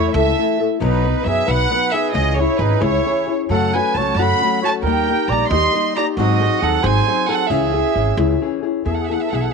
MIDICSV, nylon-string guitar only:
0, 0, Header, 1, 2, 480
1, 0, Start_track
1, 0, Key_signature, 4, "minor"
1, 0, Tempo, 446429
1, 883, Time_signature, 6, 3, 24, 8
1, 10253, End_track
2, 0, Start_track
2, 0, Title_t, "Nylon-string guitar"
2, 0, Program_c, 0, 24
2, 0, Note_on_c, 0, 52, 51
2, 0, Note_on_c, 0, 57, 57
2, 0, Note_on_c, 0, 64, 68
2, 0, Note_on_c, 0, 69, 57
2, 154, Note_off_c, 0, 69, 0
2, 156, Note_off_c, 0, 64, 0
2, 158, Note_off_c, 0, 52, 0
2, 159, Note_off_c, 0, 57, 0
2, 167, Note_on_c, 0, 69, 68
2, 168, Note_on_c, 0, 64, 62
2, 170, Note_on_c, 0, 52, 55
2, 172, Note_on_c, 0, 57, 62
2, 173, Note_on_c, 0, 49, 46
2, 397, Note_off_c, 0, 52, 0
2, 403, Note_off_c, 0, 57, 0
2, 406, Note_off_c, 0, 64, 0
2, 410, Note_on_c, 0, 52, 58
2, 416, Note_on_c, 0, 57, 59
2, 417, Note_off_c, 0, 69, 0
2, 419, Note_on_c, 0, 64, 68
2, 427, Note_off_c, 0, 49, 0
2, 430, Note_on_c, 0, 69, 62
2, 632, Note_off_c, 0, 69, 0
2, 634, Note_off_c, 0, 64, 0
2, 644, Note_off_c, 0, 57, 0
2, 645, Note_on_c, 0, 69, 52
2, 646, Note_off_c, 0, 52, 0
2, 647, Note_on_c, 0, 64, 51
2, 657, Note_on_c, 0, 57, 46
2, 860, Note_off_c, 0, 57, 0
2, 860, Note_on_c, 0, 47, 92
2, 861, Note_on_c, 0, 54, 93
2, 865, Note_on_c, 0, 59, 80
2, 868, Note_off_c, 0, 64, 0
2, 869, Note_off_c, 0, 69, 0
2, 872, Note_on_c, 0, 63, 80
2, 874, Note_on_c, 0, 71, 96
2, 1109, Note_off_c, 0, 71, 0
2, 1120, Note_off_c, 0, 63, 0
2, 1122, Note_on_c, 0, 71, 66
2, 1127, Note_off_c, 0, 47, 0
2, 1128, Note_off_c, 0, 54, 0
2, 1129, Note_off_c, 0, 59, 0
2, 1133, Note_on_c, 0, 63, 60
2, 1145, Note_on_c, 0, 59, 50
2, 1324, Note_off_c, 0, 59, 0
2, 1331, Note_off_c, 0, 63, 0
2, 1335, Note_on_c, 0, 54, 60
2, 1337, Note_on_c, 0, 59, 63
2, 1341, Note_off_c, 0, 71, 0
2, 1344, Note_on_c, 0, 63, 70
2, 1354, Note_on_c, 0, 71, 68
2, 1563, Note_off_c, 0, 71, 0
2, 1569, Note_off_c, 0, 63, 0
2, 1570, Note_off_c, 0, 54, 0
2, 1572, Note_off_c, 0, 59, 0
2, 1575, Note_on_c, 0, 71, 67
2, 1582, Note_on_c, 0, 63, 58
2, 1583, Note_on_c, 0, 54, 56
2, 1585, Note_on_c, 0, 59, 46
2, 1589, Note_on_c, 0, 47, 57
2, 1812, Note_off_c, 0, 54, 0
2, 1825, Note_off_c, 0, 59, 0
2, 1825, Note_on_c, 0, 54, 61
2, 1830, Note_off_c, 0, 63, 0
2, 1835, Note_off_c, 0, 71, 0
2, 1838, Note_on_c, 0, 59, 57
2, 1843, Note_on_c, 0, 63, 60
2, 1848, Note_on_c, 0, 71, 64
2, 1850, Note_off_c, 0, 47, 0
2, 2055, Note_off_c, 0, 71, 0
2, 2066, Note_off_c, 0, 63, 0
2, 2068, Note_on_c, 0, 71, 61
2, 2069, Note_off_c, 0, 54, 0
2, 2073, Note_off_c, 0, 59, 0
2, 2079, Note_on_c, 0, 63, 44
2, 2086, Note_on_c, 0, 59, 37
2, 2289, Note_on_c, 0, 52, 82
2, 2291, Note_on_c, 0, 49, 74
2, 2297, Note_off_c, 0, 59, 0
2, 2297, Note_off_c, 0, 63, 0
2, 2297, Note_off_c, 0, 71, 0
2, 2301, Note_on_c, 0, 61, 74
2, 2301, Note_on_c, 0, 64, 83
2, 2301, Note_on_c, 0, 68, 77
2, 2545, Note_off_c, 0, 68, 0
2, 2557, Note_off_c, 0, 52, 0
2, 2557, Note_off_c, 0, 61, 0
2, 2557, Note_off_c, 0, 64, 0
2, 2558, Note_off_c, 0, 49, 0
2, 2558, Note_on_c, 0, 68, 69
2, 2569, Note_on_c, 0, 64, 52
2, 2570, Note_on_c, 0, 61, 47
2, 2783, Note_off_c, 0, 61, 0
2, 2787, Note_on_c, 0, 52, 57
2, 2790, Note_off_c, 0, 68, 0
2, 2793, Note_off_c, 0, 64, 0
2, 2796, Note_on_c, 0, 61, 57
2, 2803, Note_on_c, 0, 68, 65
2, 2806, Note_on_c, 0, 64, 58
2, 3004, Note_off_c, 0, 64, 0
2, 3004, Note_off_c, 0, 68, 0
2, 3011, Note_off_c, 0, 61, 0
2, 3015, Note_off_c, 0, 52, 0
2, 3017, Note_on_c, 0, 64, 57
2, 3017, Note_on_c, 0, 68, 55
2, 3024, Note_on_c, 0, 61, 49
2, 3027, Note_on_c, 0, 52, 52
2, 3029, Note_on_c, 0, 49, 49
2, 3267, Note_off_c, 0, 52, 0
2, 3276, Note_off_c, 0, 61, 0
2, 3280, Note_on_c, 0, 52, 60
2, 3281, Note_off_c, 0, 64, 0
2, 3281, Note_off_c, 0, 68, 0
2, 3289, Note_on_c, 0, 61, 65
2, 3292, Note_off_c, 0, 49, 0
2, 3294, Note_on_c, 0, 64, 54
2, 3294, Note_on_c, 0, 68, 59
2, 3502, Note_off_c, 0, 68, 0
2, 3512, Note_off_c, 0, 64, 0
2, 3515, Note_on_c, 0, 68, 46
2, 3519, Note_off_c, 0, 61, 0
2, 3521, Note_off_c, 0, 52, 0
2, 3525, Note_on_c, 0, 64, 46
2, 3532, Note_on_c, 0, 61, 39
2, 3755, Note_off_c, 0, 61, 0
2, 3755, Note_off_c, 0, 68, 0
2, 3759, Note_on_c, 0, 42, 78
2, 3760, Note_off_c, 0, 64, 0
2, 3760, Note_on_c, 0, 54, 80
2, 3762, Note_on_c, 0, 49, 82
2, 3763, Note_on_c, 0, 57, 75
2, 3768, Note_on_c, 0, 61, 80
2, 3769, Note_on_c, 0, 66, 81
2, 4018, Note_off_c, 0, 66, 0
2, 4021, Note_off_c, 0, 42, 0
2, 4021, Note_off_c, 0, 54, 0
2, 4022, Note_off_c, 0, 49, 0
2, 4023, Note_off_c, 0, 57, 0
2, 4025, Note_off_c, 0, 61, 0
2, 4031, Note_on_c, 0, 66, 57
2, 4036, Note_on_c, 0, 61, 51
2, 4041, Note_on_c, 0, 57, 51
2, 4044, Note_on_c, 0, 54, 48
2, 4255, Note_off_c, 0, 54, 0
2, 4256, Note_off_c, 0, 57, 0
2, 4258, Note_off_c, 0, 61, 0
2, 4259, Note_off_c, 0, 66, 0
2, 4268, Note_on_c, 0, 54, 56
2, 4269, Note_on_c, 0, 57, 57
2, 4271, Note_on_c, 0, 61, 63
2, 4281, Note_on_c, 0, 66, 64
2, 4491, Note_off_c, 0, 61, 0
2, 4493, Note_off_c, 0, 66, 0
2, 4494, Note_off_c, 0, 54, 0
2, 4494, Note_off_c, 0, 57, 0
2, 4504, Note_on_c, 0, 61, 58
2, 4506, Note_on_c, 0, 66, 59
2, 4508, Note_on_c, 0, 49, 53
2, 4508, Note_on_c, 0, 57, 55
2, 4511, Note_on_c, 0, 42, 51
2, 4512, Note_on_c, 0, 54, 57
2, 4738, Note_off_c, 0, 54, 0
2, 4748, Note_off_c, 0, 57, 0
2, 4751, Note_on_c, 0, 54, 53
2, 4753, Note_off_c, 0, 61, 0
2, 4754, Note_off_c, 0, 66, 0
2, 4755, Note_off_c, 0, 49, 0
2, 4757, Note_off_c, 0, 42, 0
2, 4761, Note_on_c, 0, 57, 53
2, 4771, Note_on_c, 0, 61, 56
2, 4772, Note_on_c, 0, 66, 61
2, 4970, Note_off_c, 0, 66, 0
2, 4979, Note_off_c, 0, 54, 0
2, 4982, Note_off_c, 0, 61, 0
2, 4983, Note_on_c, 0, 66, 56
2, 4984, Note_off_c, 0, 57, 0
2, 4994, Note_on_c, 0, 61, 44
2, 4999, Note_on_c, 0, 57, 42
2, 5008, Note_on_c, 0, 54, 39
2, 5210, Note_off_c, 0, 66, 0
2, 5213, Note_on_c, 0, 51, 65
2, 5216, Note_off_c, 0, 61, 0
2, 5217, Note_off_c, 0, 54, 0
2, 5218, Note_off_c, 0, 57, 0
2, 5221, Note_on_c, 0, 55, 70
2, 5229, Note_on_c, 0, 58, 76
2, 5230, Note_on_c, 0, 63, 84
2, 5234, Note_on_c, 0, 67, 81
2, 5459, Note_off_c, 0, 67, 0
2, 5466, Note_off_c, 0, 51, 0
2, 5470, Note_off_c, 0, 55, 0
2, 5472, Note_on_c, 0, 67, 55
2, 5474, Note_off_c, 0, 58, 0
2, 5475, Note_off_c, 0, 63, 0
2, 5491, Note_on_c, 0, 63, 53
2, 5498, Note_on_c, 0, 58, 54
2, 5697, Note_off_c, 0, 67, 0
2, 5706, Note_off_c, 0, 58, 0
2, 5707, Note_off_c, 0, 63, 0
2, 5713, Note_on_c, 0, 55, 64
2, 5719, Note_on_c, 0, 58, 66
2, 5724, Note_on_c, 0, 63, 66
2, 5731, Note_on_c, 0, 67, 67
2, 5928, Note_off_c, 0, 67, 0
2, 5929, Note_off_c, 0, 63, 0
2, 5932, Note_off_c, 0, 55, 0
2, 5933, Note_off_c, 0, 58, 0
2, 5941, Note_on_c, 0, 67, 70
2, 5942, Note_on_c, 0, 63, 65
2, 5946, Note_on_c, 0, 58, 57
2, 5949, Note_on_c, 0, 55, 53
2, 5958, Note_on_c, 0, 51, 55
2, 6158, Note_off_c, 0, 55, 0
2, 6167, Note_off_c, 0, 58, 0
2, 6169, Note_off_c, 0, 63, 0
2, 6171, Note_on_c, 0, 55, 59
2, 6180, Note_on_c, 0, 58, 58
2, 6182, Note_on_c, 0, 63, 69
2, 6184, Note_off_c, 0, 67, 0
2, 6196, Note_off_c, 0, 51, 0
2, 6196, Note_on_c, 0, 67, 60
2, 6404, Note_off_c, 0, 55, 0
2, 6407, Note_off_c, 0, 67, 0
2, 6408, Note_off_c, 0, 58, 0
2, 6409, Note_off_c, 0, 63, 0
2, 6420, Note_on_c, 0, 67, 51
2, 6434, Note_on_c, 0, 63, 60
2, 6436, Note_on_c, 0, 58, 41
2, 6643, Note_off_c, 0, 63, 0
2, 6643, Note_off_c, 0, 67, 0
2, 6646, Note_off_c, 0, 58, 0
2, 6646, Note_on_c, 0, 51, 79
2, 6649, Note_on_c, 0, 44, 83
2, 6650, Note_on_c, 0, 60, 86
2, 6655, Note_on_c, 0, 54, 79
2, 6656, Note_on_c, 0, 63, 82
2, 6658, Note_on_c, 0, 68, 75
2, 6878, Note_off_c, 0, 68, 0
2, 6889, Note_off_c, 0, 63, 0
2, 6891, Note_on_c, 0, 68, 65
2, 6892, Note_off_c, 0, 60, 0
2, 6896, Note_off_c, 0, 51, 0
2, 6896, Note_off_c, 0, 54, 0
2, 6898, Note_off_c, 0, 44, 0
2, 6902, Note_on_c, 0, 63, 62
2, 6904, Note_on_c, 0, 60, 51
2, 6909, Note_on_c, 0, 54, 54
2, 7102, Note_off_c, 0, 54, 0
2, 7112, Note_off_c, 0, 60, 0
2, 7112, Note_off_c, 0, 63, 0
2, 7115, Note_on_c, 0, 54, 66
2, 7117, Note_off_c, 0, 68, 0
2, 7125, Note_on_c, 0, 60, 64
2, 7125, Note_on_c, 0, 63, 70
2, 7130, Note_on_c, 0, 68, 73
2, 7334, Note_off_c, 0, 60, 0
2, 7334, Note_off_c, 0, 68, 0
2, 7335, Note_off_c, 0, 63, 0
2, 7341, Note_off_c, 0, 54, 0
2, 7347, Note_on_c, 0, 60, 66
2, 7347, Note_on_c, 0, 68, 71
2, 7348, Note_on_c, 0, 63, 61
2, 7353, Note_on_c, 0, 44, 60
2, 7354, Note_on_c, 0, 54, 57
2, 7358, Note_on_c, 0, 51, 51
2, 7584, Note_off_c, 0, 54, 0
2, 7588, Note_off_c, 0, 60, 0
2, 7597, Note_on_c, 0, 54, 60
2, 7598, Note_off_c, 0, 68, 0
2, 7601, Note_on_c, 0, 60, 65
2, 7602, Note_off_c, 0, 63, 0
2, 7607, Note_off_c, 0, 44, 0
2, 7610, Note_off_c, 0, 51, 0
2, 7611, Note_on_c, 0, 68, 72
2, 7615, Note_on_c, 0, 63, 63
2, 7821, Note_off_c, 0, 68, 0
2, 7823, Note_off_c, 0, 63, 0
2, 7832, Note_off_c, 0, 54, 0
2, 7834, Note_off_c, 0, 60, 0
2, 7834, Note_on_c, 0, 68, 58
2, 7836, Note_on_c, 0, 63, 55
2, 7846, Note_on_c, 0, 54, 50
2, 7846, Note_on_c, 0, 60, 44
2, 8061, Note_off_c, 0, 54, 0
2, 8063, Note_off_c, 0, 68, 0
2, 8065, Note_off_c, 0, 60, 0
2, 8066, Note_on_c, 0, 52, 79
2, 8068, Note_off_c, 0, 63, 0
2, 8069, Note_on_c, 0, 49, 81
2, 8069, Note_on_c, 0, 61, 74
2, 8072, Note_on_c, 0, 64, 76
2, 8075, Note_on_c, 0, 68, 69
2, 8305, Note_off_c, 0, 68, 0
2, 8315, Note_off_c, 0, 64, 0
2, 8318, Note_on_c, 0, 68, 65
2, 8324, Note_off_c, 0, 61, 0
2, 8326, Note_off_c, 0, 52, 0
2, 8328, Note_off_c, 0, 49, 0
2, 8328, Note_on_c, 0, 64, 50
2, 8337, Note_on_c, 0, 61, 43
2, 8537, Note_off_c, 0, 61, 0
2, 8539, Note_off_c, 0, 64, 0
2, 8542, Note_on_c, 0, 52, 60
2, 8548, Note_off_c, 0, 68, 0
2, 8550, Note_on_c, 0, 61, 63
2, 8552, Note_on_c, 0, 64, 68
2, 8560, Note_on_c, 0, 68, 66
2, 8781, Note_off_c, 0, 68, 0
2, 8785, Note_off_c, 0, 52, 0
2, 8785, Note_off_c, 0, 61, 0
2, 8790, Note_off_c, 0, 64, 0
2, 8794, Note_on_c, 0, 68, 69
2, 8797, Note_on_c, 0, 61, 64
2, 8803, Note_on_c, 0, 52, 53
2, 8803, Note_on_c, 0, 64, 58
2, 8810, Note_on_c, 0, 49, 57
2, 9024, Note_off_c, 0, 52, 0
2, 9035, Note_off_c, 0, 61, 0
2, 9037, Note_on_c, 0, 52, 58
2, 9038, Note_off_c, 0, 64, 0
2, 9042, Note_off_c, 0, 68, 0
2, 9048, Note_on_c, 0, 61, 60
2, 9051, Note_on_c, 0, 64, 61
2, 9055, Note_on_c, 0, 68, 70
2, 9063, Note_off_c, 0, 49, 0
2, 9263, Note_off_c, 0, 68, 0
2, 9270, Note_off_c, 0, 64, 0
2, 9276, Note_on_c, 0, 68, 60
2, 9277, Note_off_c, 0, 61, 0
2, 9281, Note_off_c, 0, 52, 0
2, 9283, Note_on_c, 0, 64, 49
2, 9290, Note_on_c, 0, 61, 49
2, 9508, Note_off_c, 0, 64, 0
2, 9511, Note_off_c, 0, 68, 0
2, 9512, Note_on_c, 0, 52, 63
2, 9517, Note_off_c, 0, 61, 0
2, 9521, Note_on_c, 0, 59, 62
2, 9521, Note_on_c, 0, 64, 61
2, 9524, Note_on_c, 0, 68, 67
2, 9767, Note_off_c, 0, 68, 0
2, 9778, Note_off_c, 0, 64, 0
2, 9779, Note_off_c, 0, 52, 0
2, 9780, Note_on_c, 0, 68, 58
2, 9783, Note_off_c, 0, 59, 0
2, 9791, Note_on_c, 0, 64, 47
2, 9798, Note_on_c, 0, 59, 40
2, 10006, Note_off_c, 0, 59, 0
2, 10012, Note_off_c, 0, 64, 0
2, 10013, Note_off_c, 0, 68, 0
2, 10015, Note_on_c, 0, 52, 48
2, 10018, Note_on_c, 0, 59, 49
2, 10025, Note_on_c, 0, 64, 50
2, 10025, Note_on_c, 0, 68, 61
2, 10231, Note_off_c, 0, 64, 0
2, 10235, Note_off_c, 0, 68, 0
2, 10240, Note_off_c, 0, 59, 0
2, 10250, Note_off_c, 0, 52, 0
2, 10253, End_track
0, 0, End_of_file